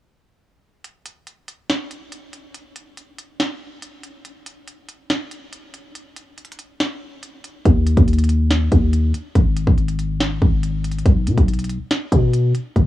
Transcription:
0.84 closed hi-hat medium
1.06 closed hi-hat medium
1.27 closed hi-hat medium
1.48 closed hi-hat medium
1.70 snare loud
1.70 closed hi-hat medium
1.91 closed hi-hat medium
2.12 closed hi-hat medium
2.33 closed hi-hat medium
2.55 closed hi-hat medium
2.76 closed hi-hat medium
2.97 closed hi-hat medium
3.18 closed hi-hat medium
3.40 snare loud
3.40 closed hi-hat medium
3.82 closed hi-hat medium
4.04 closed hi-hat medium
4.25 closed hi-hat medium
4.46 closed hi-hat medium
4.67 closed hi-hat medium
4.89 closed hi-hat medium
5.10 snare loud
5.10 closed hi-hat medium
5.31 closed hi-hat medium
5.53 closed hi-hat medium
5.74 closed hi-hat medium
5.95 closed hi-hat medium
6.16 closed hi-hat medium
6.38 closed hi-hat soft
6.45 closed hi-hat medium
6.52 closed hi-hat medium
6.59 closed hi-hat medium
6.80 snare loud
6.80 closed hi-hat medium
7.23 closed hi-hat medium
7.44 closed hi-hat medium
7.65 7.96 D#2 loud
7.65 kick loud
7.65 closed hi-hat medium
7.87 closed hi-hat medium
7.97 8.69 D#2 loud
7.97 kick loud
7.97 closed hi-hat medium
8.08 closed hi-hat medium
8.13 closed hi-hat medium
8.19 closed hi-hat medium
8.24 closed hi-hat medium
8.29 closed hi-hat medium
8.51 snare loud
8.51 closed hi-hat medium
8.72 9.13 D#2 loud
8.72 kick medium
8.72 closed hi-hat medium
8.93 closed hi-hat medium
9.14 closed hi-hat medium
9.36 9.66 G#1 loud
9.36 kick loud
9.36 closed hi-hat medium
9.57 closed hi-hat medium
9.67 10.39 G#1 loud
9.67 kick loud
9.78 closed hi-hat soft
9.89 closed hi-hat medium
9.99 closed hi-hat medium
10.21 snare loud
10.21 closed hi-hat medium
10.42 11.03 G#1 loud
10.42 kick medium
10.63 closed hi-hat medium
10.84 closed hi-hat medium
10.92 closed hi-hat medium
10.99 closed hi-hat soft
11.06 11.28 B1 loud
11.06 kick loud
11.06 closed hi-hat medium
11.27 11.37 B2 loud
11.27 closed hi-hat medium
11.38 11.78 B1 loud
11.38 kick loud
11.38 closed hi-hat medium
11.48 closed hi-hat medium
11.54 closed hi-hat medium
11.59 closed hi-hat medium
11.64 closed hi-hat medium
11.70 closed hi-hat medium
11.91 snare loud
11.91 closed hi-hat medium
12.12 12.53 B2 loud
12.12 kick loud
12.12 closed hi-hat medium
12.33 closed hi-hat medium
12.55 closed hi-hat medium
12.76 12.86 F#1 loud
12.76 kick loud
12.76 closed hi-hat medium

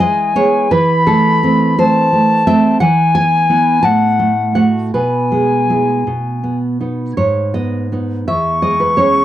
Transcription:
0.00 0.67 E3 medium
0.00 0.32 G#3 medium
0.00 0.34 D#5 loud
0.00 0.73 G#5 medium
0.35 0.67 G#3 medium
0.35 0.68 B3 medium
0.35 0.69 C#5 medium
0.71 2.47 E3 medium
0.71 1.05 B4 loud
0.71 1.81 B5 medium
1.07 1.40 A3 medium
1.07 1.75 A4 medium
1.43 1.75 A3 medium
1.43 1.75 C4 medium
1.78 2.09 A3 medium
1.78 2.09 C4 medium
1.78 2.44 C5 loud
1.78 2.80 A5 medium
2.13 2.43 A3 medium
2.47 2.77 A3 medium
2.47 2.78 C4 medium
2.47 2.79 E5 loud
2.80 3.81 E3 medium
2.80 3.13 F#5 loud
2.80 3.86 G#5 medium
3.15 3.46 B3 medium
3.15 3.82 G#5 loud
3.50 3.81 B3 medium
3.50 3.81 E4 medium
3.83 4.90 A2 medium
3.83 4.66 F#5 medium
3.83 4.53 A5 medium
4.19 4.53 A3 medium
4.55 4.90 A3 soft
4.55 4.90 F#4 soft
4.55 4.92 F#5 medium
4.94 6.03 B2 medium
4.94 6.02 B4 medium
4.94 6.57 G#5 medium
5.32 5.65 G#3 soft
5.70 6.03 G#3 soft
5.70 6.03 E4 soft
6.07 7.15 B2 soft
6.44 6.77 B3 soft
6.80 7.14 B3 soft
6.80 7.14 D#4 soft
7.17 8.24 G#2 medium
7.17 7.53 C#5 medium
7.54 7.88 B3 soft
7.54 8.24 D#5 medium
7.92 8.24 B3 soft
7.92 8.25 D#4 soft
8.28 9.25 E2 medium
8.28 8.61 E5 medium
8.28 9.25 C#6 medium
8.62 8.94 G#3 soft
8.62 8.80 D#5 medium
8.80 8.97 B4 medium
8.97 9.25 G#3 soft
8.97 9.25 C#4 soft
8.97 9.25 C#5 medium

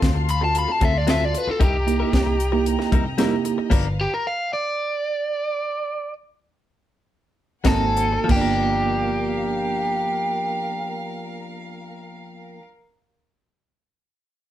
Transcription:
0.00 0.65 D2 medium
0.00 0.25 C4 medium
0.00 0.25 F4 medium
0.00 0.25 F#4 medium
0.00 0.25 A4 medium
0.00 1.59 F5 medium
0.00 1.59 A5 medium
0.00 1.59 C6 medium
0.00 muted clean electric guitar stroke soft
0.00 kick medium
0.00 snare medium
0.00 closed hi-hat medium
0.15 muted clean electric guitar stroke soft
0.29 0.43 B5 medium
0.29 closed hi-hat medium
0.41 0.91 C4 medium
0.41 0.91 F4 medium
0.41 0.91 F#4 medium
0.41 0.91 A4 medium
0.41 0.56 A5 medium
0.41 muted clean electric guitar stroke soft
0.55 0.72 B5 medium
0.55 closed hi-hat medium
0.68 0.83 A5 medium
0.68 muted clean electric guitar stroke soft
0.81 1.34 D2 medium
0.81 0.95 F#3 medium
0.81 0.95 C4 medium
0.81 0.94 F4 medium
0.81 0.93 A4 medium
0.81 0.98 E5 medium
0.81 kick medium
0.81 closed hi-hat medium
0.95 1.09 D5 medium
0.95 muted clean electric guitar stroke soft
1.07 1.23 F#3 medium
1.07 1.60 C4 medium
1.07 1.24 C4 medium
1.07 1.60 F4 medium
1.07 1.24 F4 medium
1.07 1.60 F#4 medium
1.07 1.60 A4 medium
1.07 1.24 A4 medium
1.07 1.25 E5 medium
1.07 snare loud
1.07 closed hi-hat medium
1.25 1.38 D5 medium
1.33 muted clean electric guitar stroke soft
1.33 closed hi-hat medium
1.38 1.49 B4 medium
1.47 1.62 A4 medium
1.47 muted fingered electric bass stroke soft
1.47 muted clean electric guitar stroke soft
1.59 2.02 C2 medium
1.59 1.76 G3 medium
1.59 1.76 D#4 medium
1.59 1.77 E4 medium
1.59 1.77 A#4 medium
1.59 3.68 D#5 medium
1.59 3.69 G5 medium
1.59 4.11 A#5 medium
1.59 kick loud
1.59 closed hi-hat medium
1.63 2.64 G4 medium
1.86 2.36 A#3 medium
1.86 2.36 D#4 medium
1.86 2.36 E4 medium
1.86 2.36 G4 medium
1.86 muted clean electric guitar stroke soft
1.86 closed hi-hat medium
2.00 2.12 D#4 soft
2.00 2.12 E4 soft
2.00 2.13 A#4 medium
2.13 2.76 C2 medium
2.13 muted clean electric guitar stroke soft
2.13 kick medium
2.13 snare loud
2.13 closed hi-hat medium
2.26 muted clean electric guitar stroke soft
2.40 closed hi-hat medium
2.52 3.01 A#3 medium
2.52 3.01 D#4 medium
2.52 3.01 E4 medium
2.52 3.01 G4 medium
2.52 muted clean electric guitar stroke medium
2.66 closed hi-hat medium
2.79 muted clean electric guitar stroke medium
2.79 snare soft
2.92 3.55 C3 medium
2.92 3.05 G3 medium
2.92 3.05 D#4 medium
2.92 3.05 E4 medium
2.92 3.04 A#4 medium
2.92 kick medium
2.92 closed hi-hat medium
3.05 muted clean electric guitar stroke soft
3.18 3.34 G3 medium
3.18 3.71 A#3 medium
3.18 3.34 D#4 medium
3.18 3.71 D#4 medium
3.18 3.71 E4 medium
3.18 3.35 E4 medium
3.18 3.71 G4 loud
3.18 3.35 A#4 medium
3.18 snare loud
3.18 closed hi-hat medium
3.44 muted clean electric guitar stroke soft
3.44 closed hi-hat medium
3.58 muted clean electric guitar stroke medium
3.70 4.05 G1 medium
3.70 3.87 F3 medium
3.70 3.87 B3 medium
3.70 3.87 D4 medium
3.70 3.88 A#4 medium
3.70 4.13 B4 medium
3.70 4.13 F5 medium
3.70 kick loud
3.70 closed hi-hat medium
3.70 crash medium
4.01 4.12 G4 loud
4.14 4.25 A#4 medium
4.27 4.51 F5 loud
4.53 6.13 D5 loud
7.64 8.16 G#1 medium
7.64 7.84 F#3 medium
7.64 8.26 A#3 medium
7.64 8.29 C4 medium
7.64 7.84 C4 medium
7.64 8.29 D#4 medium
7.64 7.84 D#4 medium
7.64 8.29 F#4 medium
7.64 8.28 A4 loud
7.64 7.85 A#4 medium
7.64 8.29 C5 medium
7.64 8.29 F#5 medium
7.64 8.29 G#5 medium
7.64 kick medium
7.64 snare loud
7.64 closed hi-hat medium
7.97 muted clean electric guitar stroke soft
7.97 closed hi-hat medium
8.13 muted clean electric guitar stroke soft
8.24 12.59 F3 medium
8.24 12.59 A#3 medium
8.29 12.60 G1 medium
8.29 12.60 B3 medium
8.29 12.61 D4 medium
8.29 12.62 F4 medium
8.29 12.62 G4 loud
8.29 12.60 A#4 medium
8.29 12.60 F5 medium
8.29 kick medium
8.29 crash medium
8.36 12.71 D4 medium
8.41 12.76 A#4 medium

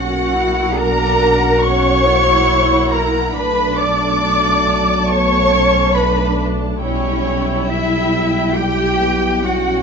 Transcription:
0.00 3.31 B1 medium
0.00 3.31 A#3 medium
0.00 0.34 C#4 medium
0.00 0.76 F#4 medium
0.00 3.31 F#4 medium
0.00 0.76 F#5 medium
0.00 0.80 F#5 medium
0.00 3.32 F#5 medium
0.34 0.77 E4 medium
0.75 1.64 D4 medium
0.75 1.64 A#4 loud
0.75 1.63 A#5 medium
0.75 1.65 A#5 medium
1.63 2.07 C#4 medium
1.63 2.93 C#5 loud
1.63 2.92 C#6 medium
1.63 2.94 C#6 loud
2.07 3.35 E4 medium
2.92 3.35 A#4 medium
2.92 3.34 A#5 medium
3.34 6.79 B1 medium
3.34 7.66 F#3 medium
3.34 6.79 A3 medium
3.34 5.09 D4 medium
3.34 3.78 B4 loud
3.34 6.82 A5 medium
3.34 3.78 B5 medium
3.34 3.79 B5 medium
3.77 5.09 D5 medium
3.77 5.09 D6 medium
3.77 5.08 D6 medium
5.08 5.51 B3 medium
5.08 5.97 C#5 loud
5.08 5.97 C#6 medium
5.08 5.95 C#6 medium
5.52 5.96 C#4 medium
5.96 6.82 D4 medium
5.96 6.40 B4 medium
5.96 6.39 B5 medium
6.81 9.83 B1 medium
6.81 9.83 G3 medium
6.81 7.65 C#4 medium
6.81 8.52 E4 medium
6.81 7.64 C#5 medium
6.81 7.71 C#5 medium
6.81 9.83 G5 medium
7.68 9.83 E4 medium
7.68 8.56 E4 medium
7.68 8.55 E5 medium
7.68 8.58 E5 medium
8.52 8.99 G3 medium
8.52 9.45 G4 medium
8.52 9.43 G5 medium
8.57 9.47 G5 medium
8.99 9.44 B3 medium
9.44 9.83 C#4 medium
9.44 9.83 F#4 medium
9.44 9.83 F#5 medium

